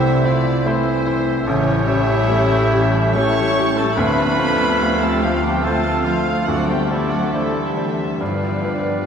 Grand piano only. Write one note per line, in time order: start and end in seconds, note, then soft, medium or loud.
0.00 1.49 C2 medium
0.00 0.21 A3 soft
0.00 0.25 E4 soft
0.00 0.25 C5 soft
0.25 0.62 E4 soft
0.25 0.62 C5 medium
0.65 1.02 A3 medium
0.65 1.02 E4 medium
0.65 1.03 C5 medium
1.06 1.43 E4 soft
1.06 1.43 C5 medium
1.47 1.86 A1 medium
1.89 2.25 G4 soft
1.89 2.25 C#5 medium
2.29 2.67 A3 medium
2.29 2.67 G4 soft
2.29 2.68 C#5 medium
2.72 3.12 G4 soft
2.72 3.12 C#5 medium
3.16 3.53 A3 medium
3.16 3.54 G4 medium
3.16 3.54 C#5 medium
3.58 3.94 G4 soft
3.58 3.94 C#5 medium
3.97 4.37 D2 medium
4.38 4.76 F4 soft
4.38 4.77 C5 soft
4.81 5.19 A3 soft
4.81 5.19 F4 soft
4.81 5.19 C5 soft
5.24 5.60 F4 soft
5.24 5.61 C5 soft
5.66 6.02 A3 medium
5.66 6.03 F4 soft
5.66 6.03 C5 medium
6.07 6.44 F4 soft
6.07 6.44 C5 soft
6.48 6.89 D2 medium
6.91 7.29 D4 soft
6.91 7.30 C5 soft
7.34 7.73 A3 soft
7.34 7.73 D4 soft
7.34 7.74 C5 soft
7.77 8.17 D4 soft
7.77 8.17 C5 soft
8.21 8.63 G2 soft
8.64 9.06 F4 soft
8.64 9.06 B4 soft